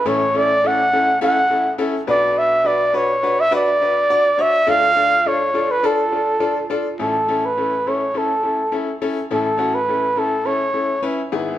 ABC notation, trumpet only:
X:1
M:4/4
L:1/16
Q:1/4=104
K:A
V:1 name="Trumpet"
c2 d2 f4 f4 z2 d2 | e2 d2 c3 e d6 e2 | =f4 c3 B A6 z2 | A3 B3 c2 A4 z4 |
A3 B3 A2 c4 z4 |]